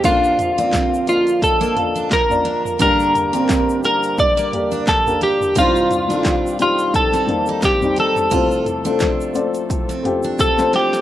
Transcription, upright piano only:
X:1
M:4/4
L:1/16
Q:"Swing 16ths" 1/4=87
K:Bb
V:1 name="Upright piano"
[B,DFd]2 z [B,DFd]2 z [B,DFef]3 z [B,DFf]2 z [B,DFd]2 z | [B,DGd]2 z [B,DGc]2 z [B,DGB]3 z [B,DGB]2 z [B,DGB]2 z | [G,CEc]2 z [E,G,CA]2 z [G,CEG]3 z [G,B,CE]2 z [G,CEG]2 z | [A,CFc]2 z [A,CFA]2 z [A,CFd]3 z [A,CFG]2 z [A,CFc]2 z |]
V:2 name="Upright piano" clef=bass
[B,,,F,,]16 | [G,,D,]16 | [C,,G,,]16 | [C,,C,]16 |]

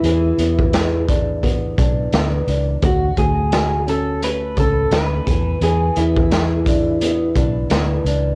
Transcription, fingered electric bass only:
X:1
M:4/4
L:1/8
Q:"Swing 16ths" 1/4=86
K:Emix
V:1 name="Fingered electric bass" clef=bass
E,, E,,4 B,,, D,, C,, | D,, D,,4 C,, D,, E,, | E,, E,,4 B,,, D,, C,, |]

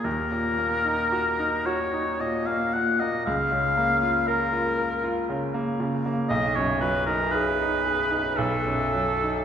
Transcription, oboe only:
X:1
M:3/4
L:1/16
Q:1/4=57
K:Ebm
V:1 name="Oboe"
B6 d2 e f g e | f4 B4 z4 | ^d _d =B _B =B4 =A4 |]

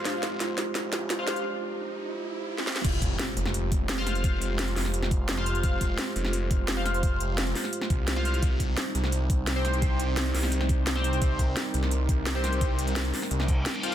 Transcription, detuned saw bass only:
X:1
M:4/4
L:1/8
Q:1/4=172
K:Fm
V:1 name="Detuned saw bass" clef=bass
F,,,3 z F,,,4 | z8 | F,,,2 z F,,,4- F,,,- | F,,,3 F,,,4- F,,, |
F,,,2 z F,,,4- F,,,- | F,,,3 z2 C,,3 | C,,2 z C,,4- C,,- | C,,3 C,,4- C,, |
C,,2 z C,,4- C,,- | C,,3 z C,,2 z2 |]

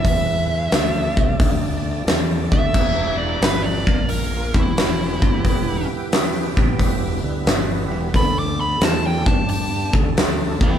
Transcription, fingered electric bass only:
X:1
M:4/4
L:1/8
Q:"Swing" 1/4=89
K:Em
V:1 name="Fingered electric bass" clef=bass
E,,2 D,, C,, D,,2 E,, D,, | E,,,2 G,,, ^A,,,2 E,,, E,,, G,,, | E,,, z2 A,,, E,,, D,, G,,, E,,, | D,,2 E,, G,,2 D,, D,, E,, |]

